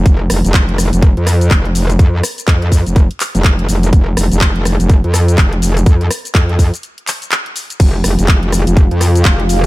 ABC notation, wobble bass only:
X:1
M:4/4
L:1/16
Q:"Swing 16ths" 1/4=124
K:Fm
V:1 name="Wobble bass" clef=bass
F,,,2 F,,, F,,,4 F,,,2 F,,3 F,,,4 | F,,2 z2 F,,3 F,,,2 z2 F,,,3 F,,,2 | F,,,2 F,,, F,,,4 F,,,2 F,,3 F,,,4 | F,,2 z2 F,,3 z8 z |
F,,,2 F,,, F,,,4 F,,,2 F,,3 F,,,4 |]